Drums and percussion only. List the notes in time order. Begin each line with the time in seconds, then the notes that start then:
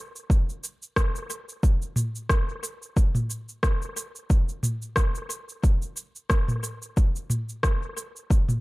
0.16 cabasa
0.30 kick, cabasa
0.49 cabasa
0.64 cabasa
0.82 cabasa
0.96 kick, cross-stick, cabasa
1.16 cabasa
1.30 cabasa
1.49 cabasa
1.63 kick, cabasa
1.82 cabasa
1.96 mid tom, cabasa
2.15 cabasa
2.29 kick, cross-stick, cabasa
2.64 cabasa
2.82 cabasa
2.97 kick, cabasa
3.15 mid tom, cabasa
3.30 cabasa
3.49 cabasa
3.63 kick, cross-stick, cabasa
3.82 cabasa
3.97 cabasa
4.16 cabasa
4.30 kick, cabasa
4.49 cabasa
4.63 mid tom, cabasa
4.82 cabasa
4.96 kick, cross-stick, cabasa
5.15 cabasa
5.30 cabasa
5.49 cabasa
5.64 kick, cabasa
5.82 cabasa
5.97 cabasa
6.16 cabasa
6.30 kick, cross-stick, cabasa
6.48 mid tom, cabasa
6.64 cabasa
6.82 cabasa
6.97 kick, cabasa
7.16 cabasa
7.30 mid tom, cabasa
7.49 cabasa
7.63 kick, cross-stick, cabasa
7.97 cabasa
8.16 cabasa
8.30 kick, cabasa
8.49 mid tom, cabasa